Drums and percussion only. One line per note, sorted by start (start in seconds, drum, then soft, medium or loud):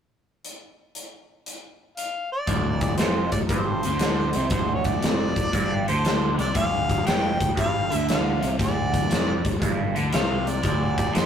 0.45 closed hi-hat medium
0.95 closed hi-hat medium
1.46 closed hi-hat medium
1.97 closed hi-hat soft
2.47 kick medium
2.47 closed hi-hat medium
2.81 kick medium
2.81 closed hi-hat medium
2.98 snare loud
2.98 closed hi-hat medium
3.32 kick medium
3.32 closed hi-hat medium
3.49 kick medium
3.49 closed hi-hat medium
3.83 closed hi-hat medium
3.99 snare loud
3.99 closed hi-hat medium
4.33 closed hi-hat medium
4.50 kick loud
4.50 closed hi-hat medium
4.84 kick medium
4.84 closed hi-hat medium
5.03 snare loud
5.03 closed hi-hat medium
5.36 kick medium
5.36 closed hi-hat medium
5.53 kick medium
5.53 closed hi-hat medium
5.88 closed hi-hat medium
6.05 snare loud
6.05 closed hi-hat medium
6.39 closed hi-hat medium
6.55 kick medium
6.55 closed hi-hat medium
6.89 kick medium
6.89 closed hi-hat medium
7.07 snare loud
7.07 closed hi-hat medium
7.40 kick medium
7.40 closed hi-hat medium
7.57 kick medium
7.57 closed hi-hat medium
7.92 closed hi-hat medium
8.09 snare loud
8.09 closed hi-hat medium
8.43 closed hi-hat medium
8.59 kick loud
8.59 closed hi-hat medium
8.94 kick medium
8.94 closed hi-hat medium
9.11 snare loud
9.11 closed hi-hat medium
9.45 kick medium
9.45 closed hi-hat medium
9.62 kick loud
9.62 closed hi-hat medium
9.96 closed hi-hat medium
10.13 snare medium
10.13 closed hi-hat medium
10.47 closed hi-hat medium
10.63 kick loud
10.63 closed hi-hat medium
10.98 kick medium
10.98 closed hi-hat medium
11.15 snare loud
11.15 closed hi-hat medium